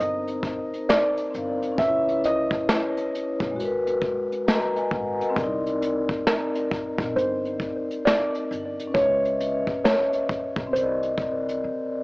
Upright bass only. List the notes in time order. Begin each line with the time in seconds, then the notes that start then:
0.01 G1
1.35 G1
1.79 C#2
3.41 B1
3.58 G#1
4.92 G#1
5.37 C2
6.99 A#1
7.16 G1
8.51 G1
8.95 C#2
10.57 B1
10.74 C2
11.18 C2
11.64 C3